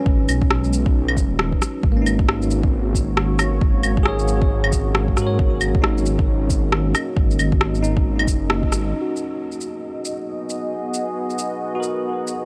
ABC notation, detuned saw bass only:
X:1
M:4/4
L:1/16
Q:"Swing 16ths" 1/4=135
K:G#m
V:1 name="Detuned saw bass" clef=bass
G,,,2 B,,,8 F,,, D,,,3 z2 | G,,,16 | G,,,2 G,,,12 G,,2 | G,,,2 G,,,12 z2 |
G,,,2 G,,,8 F,,,4 G,,,2 | z16 | z16 |]